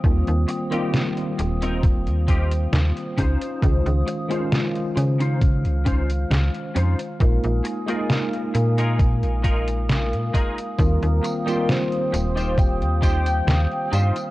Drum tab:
HH |xxxxxxxxxxxxxxxx|xxxxxxxxxxxxxxxx|xxxxxxxxxxxxxxxx|xxxxxxxxxxxxxxxx|
TB |----------------|----------------|----------------|x-xxx-xxx-xxx-xx|
SD |----o-------o---|----o-------o---|----o-------o---|----o-------o---|
BD |o-------o-o---o-|o-------o-o-----|o-------o-o---o-|o-------o-o-----|